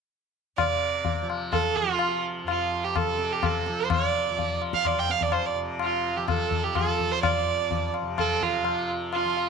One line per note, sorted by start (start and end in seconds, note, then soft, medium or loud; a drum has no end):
0.57 3.06 C3 medium
0.57 1.25 D5 medium
0.57 tabla na medium
0.57 tabla ge medium
1.05 tabla tin medium
1.05 tabla ge medium
1.22 1.82 F3 medium
1.30 tabla na medium
1.52 1.77 A4 medium
1.52 tabla na medium
1.52 tabla ge medium
1.76 2.24 F4 medium
1.76 tabla ge soft
1.82 3.68 F3 medium
1.99 tabla na medium
2.43 4.93 F2 medium
2.48 2.86 F4 medium
2.48 tabla na medium
2.84 2.98 G4 medium
2.96 3.34 A4 medium
2.96 tabla na medium
2.96 tabla ge medium
3.06 5.54 C3 medium
3.19 tabla te medium
3.32 3.46 G4 medium
3.43 3.82 A4 medium
3.43 tabla na medium
3.43 tabla ge medium
3.66 4.31 F3 soft
3.66 tabla te medium
3.80 3.91 C5 medium
3.90 4.58 D5 medium
3.90 tabla na loud
3.90 tabla ge medium
4.31 6.17 F3 medium
4.38 tabla tin medium
4.38 tabla ge medium
4.62 tabla na medium
4.73 4.88 F5 medium
4.73 tabla ke soft
4.85 5.00 D5 medium
4.85 tabla na medium
4.85 tabla ge medium
4.94 7.40 F2 medium
4.99 5.12 G5 medium
5.10 5.24 F5 medium
5.10 tabla te medium
5.21 5.35 D5 medium
5.21 tabla ge soft
5.32 5.47 C5 medium
5.32 tabla na medium
5.46 5.57 D5 medium
5.54 8.02 C3 medium
5.79 6.18 F4 medium
5.79 tabla na medium
6.17 6.78 F3 medium
6.17 6.28 G4 medium
6.28 6.65 A4 medium
6.28 tabla na medium
6.28 tabla ge medium
6.51 tabla ge soft
6.64 6.77 G4 medium
6.75 8.63 F3 medium
6.75 7.13 A4 medium
6.75 tabla na medium
6.75 tabla ge medium
7.00 tabla ge soft
7.11 7.22 C5 loud
7.22 7.90 D5 medium
7.22 tabla na loud
7.22 tabla ge medium
7.40 9.49 F2 medium
7.71 tabla tin medium
7.71 tabla ge medium
7.94 tabla na medium
8.02 9.49 C3 medium
8.18 8.44 A4 medium
8.18 tabla na medium
8.18 tabla ge medium
8.41 8.89 F4 medium
8.41 tabla ge soft
8.63 9.24 F3 medium
8.63 tabla na medium
9.13 9.49 F4 medium
9.13 tabla na medium
9.24 9.49 F3 medium
9.37 tabla na medium